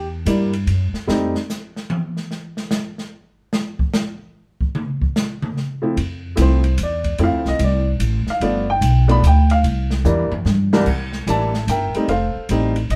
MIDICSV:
0, 0, Header, 1, 5, 480
1, 0, Start_track
1, 0, Tempo, 407609
1, 1273, Time_signature, 3, 2, 24, 8
1, 15257, End_track
2, 0, Start_track
2, 0, Title_t, "Upright piano"
2, 0, Program_c, 0, 0
2, 313, Note_on_c, 0, 55, 62
2, 316, Note_on_c, 0, 58, 52
2, 322, Note_on_c, 0, 62, 56
2, 323, Note_on_c, 0, 64, 61
2, 595, Note_off_c, 0, 55, 0
2, 596, Note_off_c, 0, 58, 0
2, 599, Note_off_c, 0, 62, 0
2, 600, Note_off_c, 0, 64, 0
2, 1265, Note_on_c, 0, 55, 66
2, 1265, Note_on_c, 0, 57, 60
2, 1272, Note_on_c, 0, 60, 62
2, 1273, Note_on_c, 0, 63, 73
2, 1582, Note_off_c, 0, 55, 0
2, 1582, Note_off_c, 0, 57, 0
2, 1585, Note_off_c, 0, 60, 0
2, 1586, Note_off_c, 0, 63, 0
2, 6850, Note_on_c, 0, 53, 57
2, 6851, Note_on_c, 0, 57, 53
2, 6860, Note_on_c, 0, 60, 52
2, 6861, Note_on_c, 0, 64, 65
2, 7007, Note_off_c, 0, 53, 0
2, 7008, Note_off_c, 0, 57, 0
2, 7013, Note_off_c, 0, 60, 0
2, 7013, Note_off_c, 0, 64, 0
2, 7484, Note_on_c, 0, 53, 64
2, 7488, Note_on_c, 0, 57, 57
2, 7496, Note_on_c, 0, 60, 56
2, 7496, Note_on_c, 0, 64, 76
2, 7556, Note_on_c, 0, 72, 75
2, 7779, Note_off_c, 0, 53, 0
2, 7781, Note_off_c, 0, 57, 0
2, 7785, Note_off_c, 0, 60, 0
2, 7785, Note_off_c, 0, 64, 0
2, 7982, Note_off_c, 0, 72, 0
2, 8045, Note_on_c, 0, 74, 72
2, 8466, Note_off_c, 0, 74, 0
2, 8469, Note_on_c, 0, 57, 62
2, 8469, Note_on_c, 0, 60, 59
2, 8470, Note_on_c, 0, 53, 68
2, 8474, Note_on_c, 0, 64, 77
2, 8522, Note_on_c, 0, 77, 85
2, 8800, Note_off_c, 0, 77, 0
2, 8810, Note_on_c, 0, 75, 84
2, 8959, Note_off_c, 0, 75, 0
2, 8999, Note_on_c, 0, 74, 74
2, 9200, Note_off_c, 0, 53, 0
2, 9200, Note_off_c, 0, 57, 0
2, 9200, Note_off_c, 0, 60, 0
2, 9203, Note_off_c, 0, 64, 0
2, 9279, Note_off_c, 0, 74, 0
2, 9777, Note_on_c, 0, 77, 86
2, 9912, Note_on_c, 0, 59, 63
2, 9914, Note_on_c, 0, 53, 74
2, 9916, Note_on_c, 0, 57, 68
2, 9927, Note_on_c, 0, 62, 80
2, 10193, Note_off_c, 0, 59, 0
2, 10194, Note_off_c, 0, 53, 0
2, 10194, Note_off_c, 0, 57, 0
2, 10200, Note_off_c, 0, 62, 0
2, 10207, Note_off_c, 0, 77, 0
2, 10245, Note_on_c, 0, 79, 91
2, 10681, Note_off_c, 0, 79, 0
2, 10688, Note_on_c, 0, 57, 63
2, 10692, Note_on_c, 0, 53, 70
2, 10696, Note_on_c, 0, 59, 68
2, 10699, Note_on_c, 0, 62, 83
2, 10730, Note_on_c, 0, 83, 95
2, 10845, Note_off_c, 0, 57, 0
2, 10847, Note_off_c, 0, 53, 0
2, 10850, Note_off_c, 0, 59, 0
2, 10851, Note_off_c, 0, 62, 0
2, 10879, Note_off_c, 0, 83, 0
2, 10916, Note_on_c, 0, 79, 86
2, 11197, Note_off_c, 0, 79, 0
2, 11203, Note_on_c, 0, 77, 96
2, 11297, Note_off_c, 0, 77, 0
2, 11831, Note_on_c, 0, 52, 75
2, 11831, Note_on_c, 0, 58, 65
2, 11832, Note_on_c, 0, 55, 67
2, 11841, Note_on_c, 0, 62, 77
2, 12112, Note_off_c, 0, 52, 0
2, 12112, Note_off_c, 0, 58, 0
2, 12113, Note_off_c, 0, 55, 0
2, 12117, Note_off_c, 0, 62, 0
2, 12633, Note_on_c, 0, 55, 75
2, 12634, Note_on_c, 0, 52, 73
2, 12637, Note_on_c, 0, 36, 85
2, 12639, Note_on_c, 0, 58, 74
2, 12642, Note_on_c, 0, 62, 83
2, 12778, Note_off_c, 0, 52, 0
2, 12778, Note_off_c, 0, 55, 0
2, 12780, Note_off_c, 0, 36, 0
2, 12781, Note_off_c, 0, 58, 0
2, 12783, Note_off_c, 0, 62, 0
2, 13273, Note_on_c, 0, 52, 64
2, 13285, Note_on_c, 0, 58, 56
2, 13286, Note_on_c, 0, 55, 56
2, 13287, Note_on_c, 0, 62, 68
2, 13297, Note_on_c, 0, 76, 64
2, 13301, Note_on_c, 0, 81, 84
2, 13553, Note_off_c, 0, 52, 0
2, 13559, Note_off_c, 0, 58, 0
2, 13560, Note_off_c, 0, 55, 0
2, 13560, Note_off_c, 0, 62, 0
2, 13764, Note_off_c, 0, 76, 0
2, 13771, Note_on_c, 0, 79, 81
2, 13779, Note_on_c, 0, 70, 61
2, 13780, Note_off_c, 0, 81, 0
2, 13781, Note_on_c, 0, 76, 61
2, 14073, Note_on_c, 0, 55, 65
2, 14077, Note_on_c, 0, 57, 57
2, 14083, Note_on_c, 0, 60, 57
2, 14087, Note_on_c, 0, 63, 68
2, 14208, Note_off_c, 0, 79, 0
2, 14212, Note_off_c, 0, 70, 0
2, 14214, Note_off_c, 0, 76, 0
2, 14218, Note_off_c, 0, 55, 0
2, 14221, Note_off_c, 0, 57, 0
2, 14224, Note_off_c, 0, 60, 0
2, 14225, Note_off_c, 0, 63, 0
2, 14239, Note_on_c, 0, 77, 87
2, 14250, Note_on_c, 0, 72, 61
2, 14254, Note_on_c, 0, 69, 59
2, 14722, Note_on_c, 0, 55, 59
2, 14728, Note_on_c, 0, 57, 54
2, 14731, Note_on_c, 0, 60, 55
2, 14732, Note_on_c, 0, 63, 72
2, 14981, Note_off_c, 0, 77, 0
2, 14987, Note_off_c, 0, 72, 0
2, 14989, Note_off_c, 0, 69, 0
2, 14998, Note_off_c, 0, 55, 0
2, 15001, Note_off_c, 0, 57, 0
2, 15003, Note_off_c, 0, 60, 0
2, 15003, Note_off_c, 0, 63, 0
2, 15201, Note_on_c, 0, 75, 88
2, 15257, Note_off_c, 0, 75, 0
2, 15257, End_track
3, 0, Start_track
3, 0, Title_t, "Upright bass"
3, 0, Program_c, 1, 32
3, 0, Note_on_c, 1, 40, 83
3, 293, Note_off_c, 1, 40, 0
3, 301, Note_on_c, 1, 43, 89
3, 772, Note_off_c, 1, 43, 0
3, 783, Note_on_c, 1, 42, 83
3, 1079, Note_off_c, 1, 42, 0
3, 1266, Note_on_c, 1, 41, 82
3, 1573, Note_off_c, 1, 41, 0
3, 7027, Note_on_c, 1, 41, 80
3, 7494, Note_off_c, 1, 41, 0
3, 7507, Note_on_c, 1, 36, 97
3, 7974, Note_off_c, 1, 36, 0
3, 7985, Note_on_c, 1, 40, 87
3, 8453, Note_off_c, 1, 40, 0
3, 8462, Note_on_c, 1, 41, 82
3, 8618, Note_off_c, 1, 41, 0
3, 8618, Note_on_c, 1, 38, 56
3, 8775, Note_off_c, 1, 38, 0
3, 8782, Note_on_c, 1, 36, 62
3, 8932, Note_off_c, 1, 36, 0
3, 8939, Note_on_c, 1, 36, 89
3, 9410, Note_off_c, 1, 36, 0
3, 9415, Note_on_c, 1, 33, 84
3, 9713, Note_off_c, 1, 33, 0
3, 9897, Note_on_c, 1, 31, 78
3, 10369, Note_off_c, 1, 31, 0
3, 10377, Note_on_c, 1, 35, 106
3, 10849, Note_off_c, 1, 35, 0
3, 10857, Note_on_c, 1, 38, 91
3, 11329, Note_off_c, 1, 38, 0
3, 11344, Note_on_c, 1, 36, 87
3, 11812, Note_off_c, 1, 36, 0
3, 11827, Note_on_c, 1, 40, 105
3, 12119, Note_off_c, 1, 40, 0
3, 12303, Note_on_c, 1, 43, 98
3, 12772, Note_off_c, 1, 43, 0
3, 12786, Note_on_c, 1, 36, 71
3, 13254, Note_off_c, 1, 36, 0
3, 13267, Note_on_c, 1, 33, 91
3, 13734, Note_off_c, 1, 33, 0
3, 13746, Note_on_c, 1, 31, 90
3, 14039, Note_off_c, 1, 31, 0
3, 14227, Note_on_c, 1, 29, 73
3, 14520, Note_off_c, 1, 29, 0
3, 14709, Note_on_c, 1, 33, 92
3, 15176, Note_off_c, 1, 33, 0
3, 15186, Note_on_c, 1, 34, 83
3, 15257, Note_off_c, 1, 34, 0
3, 15257, End_track
4, 0, Start_track
4, 0, Title_t, "Muted upright bass strokes"
4, 1095, Note_on_c, 9, 29, 40
4, 1213, Note_off_c, 9, 29, 0
4, 9733, Note_on_c, 9, 29, 42
4, 9851, Note_off_c, 9, 29, 0
4, 12139, Note_on_c, 9, 29, 43
4, 12256, Note_off_c, 9, 29, 0
4, 14062, Note_on_c, 9, 29, 39
4, 14180, Note_off_c, 9, 29, 0
4, 14545, Note_on_c, 9, 29, 39
4, 14662, Note_off_c, 9, 29, 0
4, 15257, End_track
5, 0, Start_track
5, 0, Title_t, "Drums"
5, 310, Note_on_c, 9, 44, 49
5, 310, Note_on_c, 9, 51, 72
5, 427, Note_off_c, 9, 44, 0
5, 427, Note_off_c, 9, 51, 0
5, 628, Note_on_c, 9, 51, 46
5, 746, Note_off_c, 9, 51, 0
5, 792, Note_on_c, 9, 51, 56
5, 909, Note_off_c, 9, 51, 0
5, 1108, Note_on_c, 9, 38, 41
5, 1226, Note_off_c, 9, 38, 0
5, 1280, Note_on_c, 9, 38, 88
5, 1397, Note_off_c, 9, 38, 0
5, 1591, Note_on_c, 9, 38, 45
5, 1708, Note_off_c, 9, 38, 0
5, 1763, Note_on_c, 9, 38, 49
5, 1765, Note_on_c, 9, 44, 57
5, 1881, Note_off_c, 9, 38, 0
5, 1882, Note_off_c, 9, 44, 0
5, 2078, Note_on_c, 9, 38, 43
5, 2195, Note_off_c, 9, 38, 0
5, 2236, Note_on_c, 9, 48, 91
5, 2354, Note_off_c, 9, 48, 0
5, 2552, Note_on_c, 9, 38, 36
5, 2669, Note_off_c, 9, 38, 0
5, 2717, Note_on_c, 9, 38, 43
5, 2835, Note_off_c, 9, 38, 0
5, 3026, Note_on_c, 9, 38, 49
5, 3143, Note_off_c, 9, 38, 0
5, 3188, Note_on_c, 9, 38, 98
5, 3189, Note_on_c, 9, 44, 57
5, 3306, Note_off_c, 9, 38, 0
5, 3307, Note_off_c, 9, 44, 0
5, 3512, Note_on_c, 9, 38, 41
5, 3630, Note_off_c, 9, 38, 0
5, 4153, Note_on_c, 9, 38, 98
5, 4271, Note_off_c, 9, 38, 0
5, 4467, Note_on_c, 9, 36, 81
5, 4585, Note_off_c, 9, 36, 0
5, 4634, Note_on_c, 9, 38, 96
5, 4636, Note_on_c, 9, 44, 53
5, 4752, Note_off_c, 9, 38, 0
5, 4753, Note_off_c, 9, 44, 0
5, 5424, Note_on_c, 9, 36, 72
5, 5542, Note_off_c, 9, 36, 0
5, 5593, Note_on_c, 9, 47, 92
5, 5710, Note_off_c, 9, 47, 0
5, 5906, Note_on_c, 9, 36, 79
5, 6024, Note_off_c, 9, 36, 0
5, 6077, Note_on_c, 9, 38, 96
5, 6078, Note_on_c, 9, 44, 61
5, 6195, Note_off_c, 9, 38, 0
5, 6196, Note_off_c, 9, 44, 0
5, 6388, Note_on_c, 9, 47, 91
5, 6505, Note_off_c, 9, 47, 0
5, 6559, Note_on_c, 9, 38, 36
5, 6677, Note_off_c, 9, 38, 0
5, 6868, Note_on_c, 9, 47, 35
5, 6986, Note_off_c, 9, 47, 0
5, 7033, Note_on_c, 9, 51, 61
5, 7150, Note_off_c, 9, 51, 0
5, 7502, Note_on_c, 9, 44, 63
5, 7502, Note_on_c, 9, 51, 80
5, 7620, Note_off_c, 9, 44, 0
5, 7620, Note_off_c, 9, 51, 0
5, 7816, Note_on_c, 9, 51, 46
5, 7934, Note_off_c, 9, 51, 0
5, 7980, Note_on_c, 9, 44, 61
5, 7980, Note_on_c, 9, 51, 69
5, 8098, Note_off_c, 9, 44, 0
5, 8098, Note_off_c, 9, 51, 0
5, 8293, Note_on_c, 9, 36, 49
5, 8293, Note_on_c, 9, 51, 48
5, 8411, Note_off_c, 9, 36, 0
5, 8411, Note_off_c, 9, 51, 0
5, 8459, Note_on_c, 9, 51, 58
5, 8577, Note_off_c, 9, 51, 0
5, 8777, Note_on_c, 9, 38, 48
5, 8895, Note_off_c, 9, 38, 0
5, 8942, Note_on_c, 9, 51, 66
5, 9060, Note_off_c, 9, 51, 0
5, 9420, Note_on_c, 9, 44, 55
5, 9420, Note_on_c, 9, 51, 73
5, 9538, Note_off_c, 9, 44, 0
5, 9538, Note_off_c, 9, 51, 0
5, 9737, Note_on_c, 9, 38, 39
5, 9854, Note_off_c, 9, 38, 0
5, 9907, Note_on_c, 9, 51, 63
5, 10025, Note_off_c, 9, 51, 0
5, 10385, Note_on_c, 9, 44, 54
5, 10385, Note_on_c, 9, 51, 74
5, 10503, Note_off_c, 9, 44, 0
5, 10503, Note_off_c, 9, 51, 0
5, 10708, Note_on_c, 9, 51, 50
5, 10825, Note_off_c, 9, 51, 0
5, 10877, Note_on_c, 9, 44, 62
5, 10877, Note_on_c, 9, 51, 70
5, 10995, Note_off_c, 9, 44, 0
5, 10995, Note_off_c, 9, 51, 0
5, 11185, Note_on_c, 9, 51, 51
5, 11303, Note_off_c, 9, 51, 0
5, 11354, Note_on_c, 9, 51, 63
5, 11471, Note_off_c, 9, 51, 0
5, 11664, Note_on_c, 9, 38, 56
5, 11782, Note_off_c, 9, 38, 0
5, 11834, Note_on_c, 9, 48, 51
5, 11835, Note_on_c, 9, 44, 55
5, 11952, Note_off_c, 9, 48, 0
5, 11953, Note_off_c, 9, 44, 0
5, 12149, Note_on_c, 9, 43, 80
5, 12266, Note_off_c, 9, 43, 0
5, 12314, Note_on_c, 9, 38, 65
5, 12432, Note_off_c, 9, 38, 0
5, 12634, Note_on_c, 9, 38, 96
5, 12752, Note_off_c, 9, 38, 0
5, 12788, Note_on_c, 9, 49, 70
5, 12791, Note_on_c, 9, 36, 66
5, 12905, Note_off_c, 9, 49, 0
5, 12909, Note_off_c, 9, 36, 0
5, 13102, Note_on_c, 9, 38, 44
5, 13219, Note_off_c, 9, 38, 0
5, 13276, Note_on_c, 9, 44, 55
5, 13276, Note_on_c, 9, 51, 63
5, 13394, Note_off_c, 9, 44, 0
5, 13394, Note_off_c, 9, 51, 0
5, 13588, Note_on_c, 9, 38, 52
5, 13706, Note_off_c, 9, 38, 0
5, 13753, Note_on_c, 9, 44, 52
5, 13753, Note_on_c, 9, 51, 63
5, 13871, Note_off_c, 9, 44, 0
5, 13871, Note_off_c, 9, 51, 0
5, 14066, Note_on_c, 9, 51, 45
5, 14184, Note_off_c, 9, 51, 0
5, 14230, Note_on_c, 9, 51, 54
5, 14348, Note_off_c, 9, 51, 0
5, 14707, Note_on_c, 9, 44, 58
5, 14707, Note_on_c, 9, 51, 72
5, 14825, Note_off_c, 9, 44, 0
5, 14825, Note_off_c, 9, 51, 0
5, 15023, Note_on_c, 9, 51, 43
5, 15141, Note_off_c, 9, 51, 0
5, 15193, Note_on_c, 9, 51, 61
5, 15257, Note_off_c, 9, 51, 0
5, 15257, End_track
0, 0, End_of_file